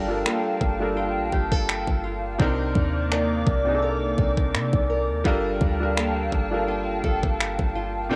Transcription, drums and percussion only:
0.26 finger snap loud
0.61 kick medium
1.32 kick medium
1.52 kick medium
1.69 finger snap loud
1.87 kick medium
2.40 kick loud
2.75 kick medium
3.12 finger snap loud
3.47 kick medium
4.18 kick medium
4.37 kick medium
4.55 finger snap loud
4.73 kick medium
5.25 kick loud
5.61 kick medium
5.97 finger snap loud
6.32 kick medium
7.04 kick medium
7.23 kick medium
7.40 finger snap loud
7.59 kick medium

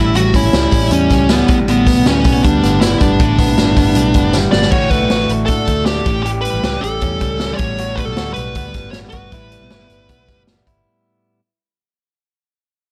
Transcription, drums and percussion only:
0.15 hi-hat pedal medium
0.15 open hi-hat medium
0.34 kick medium
0.34 hi-hat pedal medium
0.34 open hi-hat medium
0.34 tambourine medium
0.53 snare loud
0.53 hi-hat pedal medium
0.53 open hi-hat medium
0.53 tambourine medium
0.71 kick medium
0.71 hi-hat pedal medium
0.71 open hi-hat medium
0.71 tambourine medium
0.91 hi-hat pedal medium
0.91 open hi-hat loud
0.91 tambourine medium
1.10 kick medium
1.10 snare soft
1.10 hi-hat pedal medium
1.10 open hi-hat medium
1.10 tambourine soft
1.29 snare loud
1.29 hi-hat pedal medium
1.29 open hi-hat loud
1.29 tambourine loud
1.48 kick loud
1.48 hi-hat pedal medium
1.48 open hi-hat medium
1.48 tambourine medium
1.68 hi-hat pedal medium
1.68 open hi-hat medium
1.68 tambourine soft
1.87 kick medium
1.87 hi-hat pedal medium
1.87 open hi-hat medium
1.87 tambourine medium
2.06 snare loud
2.06 hi-hat pedal medium
2.06 open hi-hat medium
2.06 tambourine medium
2.24 kick loud
2.24 hi-hat pedal medium
2.24 open hi-hat medium
2.24 tambourine medium
2.44 kick medium
2.44 hi-hat pedal medium
2.44 open hi-hat loud
2.44 tambourine medium
2.63 snare soft
2.63 hi-hat pedal medium
2.63 open hi-hat medium
2.63 tambourine soft
2.81 snare loud
2.81 hi-hat pedal medium
2.81 open hi-hat loud
2.81 tambourine loud
3.00 kick medium
3.00 hi-hat pedal medium
3.00 open hi-hat medium
3.00 tambourine medium
3.20 kick loud
3.20 hi-hat pedal medium
3.20 open hi-hat medium
3.20 tambourine soft
3.39 kick medium
3.39 hi-hat pedal medium
3.39 open hi-hat medium
3.39 tambourine medium
3.58 snare loud
3.58 hi-hat pedal medium
3.58 open hi-hat medium
3.58 tambourine medium
3.76 kick medium
3.76 hi-hat pedal medium
3.76 open hi-hat medium
3.76 tambourine medium
3.95 hi-hat pedal medium
3.95 open hi-hat loud
3.95 tambourine medium
4.14 kick medium
4.14 hi-hat pedal medium
4.14 open hi-hat medium
4.14 tambourine soft
4.33 snare medium
4.33 tambourine loud
4.53 snare loud
4.53 tambourine medium
4.62 snare loud
4.72 kick loud
4.72 crash medium
4.91 kick medium
4.91 closed hi-hat medium
5.10 snare medium
5.10 closed hi-hat medium
5.29 closed hi-hat medium
5.48 kick medium
5.48 closed hi-hat medium
5.67 kick medium
5.67 closed hi-hat medium
5.86 snare loud
5.86 closed hi-hat medium
6.06 kick medium
6.06 closed hi-hat medium
6.26 closed hi-hat medium
6.45 closed hi-hat medium
6.63 snare loud
6.63 closed hi-hat medium
6.84 closed hi-hat medium
7.01 kick medium
7.01 closed hi-hat medium
7.21 kick medium
7.21 closed hi-hat medium
7.40 snare medium
7.40 closed hi-hat medium
7.58 kick loud
7.58 closed hi-hat medium
7.78 closed hi-hat medium
7.98 kick medium
7.98 closed hi-hat medium
8.17 snare loud
8.17 closed hi-hat medium
8.36 closed hi-hat medium
8.55 kick medium
8.55 closed hi-hat medium
8.74 kick medium
8.74 snare soft
8.74 closed hi-hat medium
8.93 snare loud
8.93 closed hi-hat medium
9.12 kick medium
9.12 closed hi-hat medium
9.32 kick medium
9.32 closed hi-hat medium
9.52 closed hi-hat medium
9.70 snare medium
9.70 closed hi-hat medium
9.90 closed hi-hat medium
10.09 kick medium
10.09 closed hi-hat medium
10.28 kick medium
10.28 snare soft
10.28 closed hi-hat soft
10.47 snare medium
10.47 closed hi-hat medium
10.67 kick medium
10.67 closed hi-hat medium

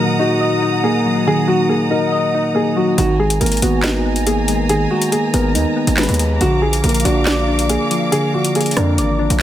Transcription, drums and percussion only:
2.98 closed hi-hat medium
3.30 closed hi-hat medium
3.41 closed hi-hat medium
3.46 closed hi-hat medium
3.52 closed hi-hat medium
3.57 closed hi-hat medium
3.62 closed hi-hat medium
3.83 snare loud
3.83 clap medium
4.16 closed hi-hat medium
4.27 closed hi-hat medium
4.48 closed hi-hat medium
4.69 closed hi-hat medium
5.02 closed hi-hat medium
5.12 closed hi-hat medium
5.34 closed hi-hat medium
5.55 closed hi-hat medium
5.87 closed hi-hat medium
5.97 snare loud
5.97 clap loud
5.97 closed hi-hat medium
6.03 closed hi-hat medium
6.09 closed hi-hat medium
6.14 closed hi-hat medium
6.19 closed hi-hat medium
6.41 closed hi-hat medium
6.73 closed hi-hat medium
6.84 closed hi-hat medium
6.89 closed hi-hat medium
6.94 closed hi-hat medium
7.00 closed hi-hat medium
7.05 closed hi-hat medium
7.26 snare loud
7.26 clap medium
7.59 closed hi-hat medium
7.70 closed hi-hat medium
7.91 closed hi-hat medium
8.12 closed hi-hat medium
8.45 closed hi-hat medium
8.55 closed hi-hat medium
8.61 closed hi-hat medium
8.66 closed hi-hat medium
8.71 closed hi-hat medium
8.77 cross-stick loud
8.77 closed hi-hat medium
8.98 closed hi-hat medium
9.30 closed hi-hat medium

